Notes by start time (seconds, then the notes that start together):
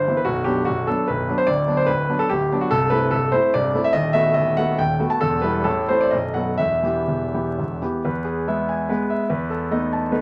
Already playing: C5
0.08 E3 B3 E4
0.17 B4
0.25 B0 B1 F#4
0.44 F#3 B3 D4 G4
0.65 B0 B1 F#4
0.87 F#3 B3 D4 A4
1.08 B0 B1 B4
1.29 F#3 B3 D4
1.38 C5
1.47 D1 D2 D5
1.67 F#3 B3 D4
1.77 C5
1.86 D1 D2 B4
2.09 F#3 B3 D4
2.19 A4
2.29 D1 D2 G4
2.52 F#3 B3 D4
2.61 F#4
2.71 C1 C2 A4
2.90 A3 C4 E4 B4
3.11 C1 C2 A4
3.32 A3 C4 E4 C5
3.54 C1 C2 D5
3.74 A3 C4 E4
3.84 E5
3.93 D#1 D#2 D#5
4.13 A3 B3 F#4 E5
4.34 D#1 D#2 D#5
4.57 A3 B3 F#4 F#5
4.79 D#1 D#2 G5
4.99 A3 B3 F#4
5.10 A5
5.21 E1 E2 A4
5.42 G3 B3 E4 B4
5.64 A1 A2 A4
5.89 A3 C4 E4 C5
6.01 D5
6.11 B0 B1 D#5
6.34 F#3 B3 A4 F#5
6.58 E1 E2 E5
6.83 E3 B3 G4
7.08 E1 E2
7.34 E3 B3 G4
7.58 E1 E2
7.82 E3 B3 G4
8.05 E2 B4
8.25 G#4
8.48 G#3 B3 E5
8.69 G#5
8.89 G#3 B3 B4
9.10 E5
9.29 E2 B4
9.50 A4
9.71 A3 B3 D#4 D#5
9.93 A5
10.12 A3 B3 D#4 B4